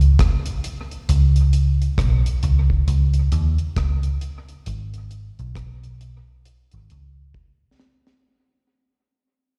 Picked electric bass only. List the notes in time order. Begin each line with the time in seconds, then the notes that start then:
Already playing: C#2
1.09 C#2
1.99 B1
2.43 C#2
2.88 C#2
3.32 D#2
3.77 C#2
4.67 G#1
5.39 B1
5.56 B1
6.74 G#1
6.91 C#2